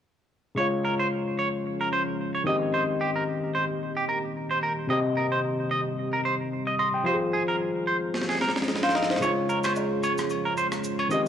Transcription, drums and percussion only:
8.14 snare medium
8.22 snare medium
8.29 snare medium
8.35 snare medium
8.41 snare medium
8.49 snare medium
8.56 snare medium
8.62 snare medium
8.68 snare medium
8.76 snare medium
8.83 snare medium
8.89 snare medium
8.95 snare medium
9.03 snare medium
9.10 snare loud
9.16 snare medium
9.22 high agogo medium
9.22 shaker medium
9.49 shaker soft
9.64 cross-stick loud
9.64 high agogo medium
9.64 shaker medium
9.76 low woodblock medium
9.76 shaker medium
10.03 high agogo medium
10.03 shaker medium
10.18 cross-stick medium
10.18 shaker medium
10.30 high agogo medium
10.30 shaker medium
10.57 shaker medium
10.72 cross-stick medium
10.72 shaker medium
10.84 shaker medium
10.99 high agogo medium
11.11 shaker soft

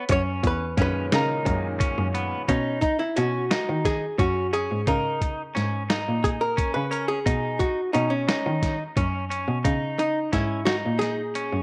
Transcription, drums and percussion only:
0.09 kick loud
0.09 closed hi-hat medium
0.44 kick medium
0.44 closed hi-hat medium
0.78 kick medium
0.78 snare soft
0.78 closed hi-hat medium
1.12 snare loud
1.12 closed hi-hat medium
1.46 kick medium
1.46 closed hi-hat medium
1.80 kick loud
1.80 closed hi-hat medium
2.15 closed hi-hat medium
2.48 kick medium
2.48 closed hi-hat medium
2.82 kick medium
2.82 closed hi-hat medium
3.17 closed hi-hat medium
3.51 snare loud
3.51 closed hi-hat medium
3.85 kick medium
3.85 snare soft
3.85 closed hi-hat medium
4.19 kick medium
4.19 closed hi-hat medium
4.54 closed hi-hat soft
4.87 kick loud
4.87 closed hi-hat medium
5.21 kick medium
5.21 closed hi-hat medium
5.57 snare soft
5.57 closed hi-hat medium
5.90 snare loud
5.90 closed hi-hat medium
6.24 kick medium
6.24 closed hi-hat medium
6.58 kick loud
6.58 closed hi-hat medium
6.93 closed hi-hat medium
7.26 kick loud
7.26 closed hi-hat medium
7.60 kick medium
7.60 closed hi-hat medium
7.95 closed hi-hat medium
8.29 snare loud
8.29 closed hi-hat medium
8.63 kick medium
8.63 snare soft
8.63 closed hi-hat medium
8.97 kick loud
8.97 closed hi-hat medium
9.32 closed hi-hat medium
9.65 kick loud
9.65 closed hi-hat medium
9.99 closed hi-hat medium
10.33 kick medium
10.33 snare soft
10.33 closed hi-hat medium
10.67 snare loud
10.67 closed hi-hat medium
11.01 snare soft
11.01 closed hi-hat medium
11.35 closed hi-hat medium

